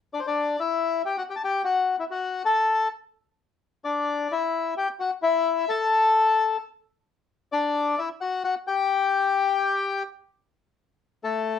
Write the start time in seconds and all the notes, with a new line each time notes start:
0.14 D4 D5
0.20 C5
0.27 D4 D5
0.60 E4 E5
1.06 G4 G5
1.18 F#4 F#5
1.30 G4 G5
1.36 A5
1.44 G4 G5
1.64 F#4 F#5
2.00 E4 E5
2.11 F#4 F#5
2.45 A4 A5
3.85 D4 D5
4.31 E4 E5
4.77 G4 G5
5.00 F#4 F#5
5.22 E4 E5
5.69 A4 A5
7.52 D4 D5
7.99 E4 E5
8.21 F#4 F#5
8.44 F#4 F#5
8.67 G4 G5
11.24 A3 A4